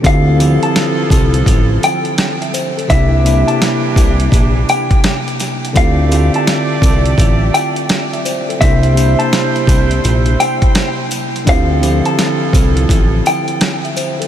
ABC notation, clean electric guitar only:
X:1
M:4/4
L:1/16
Q:"Swing 16ths" 1/4=84
K:Dm
V:1 name="Clean electric guitar"
f3 a6- a g6 | e3 a6- a g6 | f3 a6- a g6 | e3 a6- a g6 |
f3 a6- a g6 |]